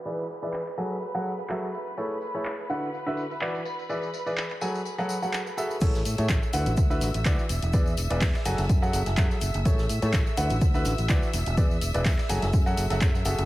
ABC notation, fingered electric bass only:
X:1
M:4/4
L:1/16
Q:"Swing 16ths" 1/4=125
K:F#m
V:1 name="Fingered electric bass" clef=bass
z16 | z16 | z16 | A,,,2 A,, A,, A,,, z D,, A,,, D,,2 A,,, A,,, D,, z E,,, E,,, |
E,,2 E,,, E,,, E,, z F,,, F,,, F,,2 F,,, F,,, F,, z F,,, F,,, | z2 A,, A,, A,,, z D,, A,,, D,,2 A,,, A,,, D,, z E,,, E,,, | E,,2 E,,, E,,, E,, z F,,, F,,, F,,2 F,,, F,,, F,,2 F,,, F,,, |]